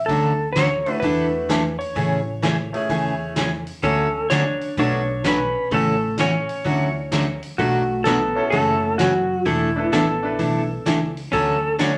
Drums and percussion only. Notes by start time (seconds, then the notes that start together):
0.08 kick, open hi-hat
0.56 snare, closed hi-hat
0.86 open hi-hat
1.02 kick, open hi-hat
1.50 snare, closed hi-hat
1.80 open hi-hat
1.96 kick, open hi-hat
2.43 snare, closed hi-hat
2.74 open hi-hat
2.89 kick, open hi-hat
3.36 snare, closed hi-hat
3.67 open hi-hat
3.83 kick, open hi-hat
4.30 snare, closed hi-hat
4.61 open hi-hat
4.77 kick, open hi-hat
5.24 snare, closed hi-hat
5.71 kick, open hi-hat
6.18 snare, closed hi-hat
6.49 open hi-hat
6.65 kick, open hi-hat
7.12 snare, closed hi-hat
7.42 open hi-hat
7.58 kick, open hi-hat
8.05 snare, closed hi-hat
8.52 kick, open hi-hat
8.99 snare, closed hi-hat
9.46 kick, open hi-hat
9.93 snare, closed hi-hat
10.39 kick, open hi-hat
10.86 snare, closed hi-hat
11.17 open hi-hat
11.32 kick, open hi-hat
11.79 snare, closed hi-hat